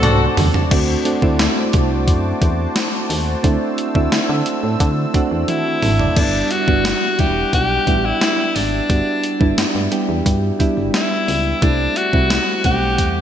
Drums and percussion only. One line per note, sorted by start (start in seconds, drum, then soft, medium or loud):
0.03 closed hi-hat medium
0.03 mid tom loud
0.37 floor tom loud
0.37 open hi-hat medium
0.54 floor tom medium
0.71 kick loud
0.71 closed hi-hat medium
0.71 crash medium
1.05 closed hi-hat medium
1.22 kick medium
1.39 snare loud
1.39 closed hi-hat medium
1.73 kick medium
1.73 closed hi-hat medium
2.08 kick medium
2.08 closed hi-hat medium
2.42 kick medium
2.42 closed hi-hat medium
2.76 snare loud
2.76 closed hi-hat medium
3.10 open hi-hat medium
3.44 kick loud
3.44 closed hi-hat medium
3.78 closed hi-hat medium
3.95 kick medium
4.12 snare loud
4.12 closed hi-hat medium
4.46 closed hi-hat medium
4.80 kick medium
4.80 closed hi-hat medium
5.14 kick medium
5.14 closed hi-hat medium
5.48 closed hi-hat medium
5.48 high tom medium
5.82 mid tom medium
5.82 open hi-hat medium
5.99 floor tom medium
6.16 kick loud
6.16 closed hi-hat medium
6.16 crash medium
6.51 closed hi-hat medium
6.68 kick medium
6.85 snare loud
6.85 closed hi-hat medium
7.19 kick medium
7.19 closed hi-hat medium
7.53 kick medium
7.53 closed hi-hat medium
7.87 kick medium
7.87 closed hi-hat medium
8.21 snare loud
8.21 closed hi-hat medium
8.56 open hi-hat medium
8.90 kick loud
8.90 closed hi-hat medium
9.24 closed hi-hat medium
9.41 kick medium
9.58 snare loud
9.58 closed hi-hat medium
9.92 closed hi-hat medium
10.26 kick medium
10.26 closed hi-hat loud
10.60 kick medium
10.60 closed hi-hat medium
10.94 snare loud
10.94 closed hi-hat medium
11.28 open hi-hat medium
11.62 kick loud
11.62 closed hi-hat medium
11.96 closed hi-hat medium
12.13 kick medium
12.30 snare loud
12.30 closed hi-hat medium
12.64 kick medium
12.64 closed hi-hat medium
12.98 kick medium
12.98 closed hi-hat medium